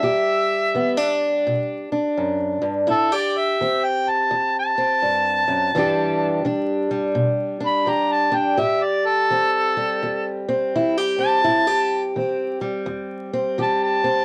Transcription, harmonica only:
0, 0, Header, 1, 2, 480
1, 0, Start_track
1, 0, Tempo, 713436
1, 26, Time_signature, 4, 2, 24, 8
1, 9587, End_track
2, 0, Start_track
2, 0, Title_t, "Harmonica"
2, 0, Program_c, 0, 22
2, 0, Note_on_c, 0, 76, 92
2, 806, Note_off_c, 0, 76, 0
2, 1958, Note_on_c, 0, 69, 97
2, 2117, Note_on_c, 0, 74, 83
2, 2127, Note_off_c, 0, 69, 0
2, 2275, Note_on_c, 0, 76, 81
2, 2285, Note_off_c, 0, 74, 0
2, 2589, Note_on_c, 0, 79, 71
2, 2599, Note_off_c, 0, 76, 0
2, 2759, Note_on_c, 0, 81, 77
2, 2769, Note_off_c, 0, 79, 0
2, 3063, Note_off_c, 0, 81, 0
2, 3090, Note_on_c, 0, 81, 93
2, 4491, Note_off_c, 0, 81, 0
2, 5157, Note_on_c, 0, 83, 85
2, 5312, Note_on_c, 0, 82, 77
2, 5323, Note_off_c, 0, 83, 0
2, 5463, Note_on_c, 0, 81, 80
2, 5474, Note_off_c, 0, 82, 0
2, 5627, Note_on_c, 0, 79, 77
2, 5637, Note_off_c, 0, 81, 0
2, 5786, Note_on_c, 0, 76, 73
2, 5796, Note_off_c, 0, 79, 0
2, 5942, Note_on_c, 0, 74, 80
2, 5952, Note_off_c, 0, 76, 0
2, 6100, Note_on_c, 0, 69, 97
2, 6110, Note_off_c, 0, 74, 0
2, 7035, Note_off_c, 0, 69, 0
2, 7540, Note_on_c, 0, 81, 115
2, 8163, Note_off_c, 0, 81, 0
2, 9164, Note_on_c, 0, 81, 75
2, 9307, Note_off_c, 0, 81, 0
2, 9311, Note_on_c, 0, 81, 102
2, 9587, Note_off_c, 0, 81, 0
2, 9587, End_track
0, 0, End_of_file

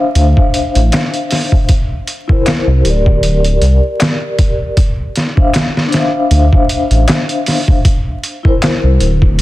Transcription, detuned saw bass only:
0, 0, Header, 1, 2, 480
1, 0, Start_track
1, 0, Key_signature, -1, "minor"
1, 0, Tempo, 769231
1, 1058, Time_signature, 4, 2, 24, 8
1, 5877, End_track
2, 0, Start_track
2, 0, Title_t, "Detuned saw bass"
2, 0, Program_c, 0, 39
2, 96, Note_on_c, 0, 38, 93
2, 215, Note_off_c, 0, 38, 0
2, 470, Note_on_c, 0, 33, 86
2, 564, Note_off_c, 0, 33, 0
2, 1667, Note_on_c, 0, 36, 86
2, 1762, Note_off_c, 0, 36, 0
2, 1775, Note_on_c, 0, 26, 87
2, 2236, Note_off_c, 0, 26, 0
2, 2255, Note_on_c, 0, 36, 76
2, 2375, Note_off_c, 0, 36, 0
2, 3936, Note_on_c, 0, 38, 90
2, 4055, Note_off_c, 0, 38, 0
2, 4310, Note_on_c, 0, 33, 94
2, 4404, Note_off_c, 0, 33, 0
2, 5512, Note_on_c, 0, 36, 84
2, 5605, Note_off_c, 0, 36, 0
2, 5617, Note_on_c, 0, 26, 94
2, 5877, Note_off_c, 0, 26, 0
2, 5877, End_track
0, 0, End_of_file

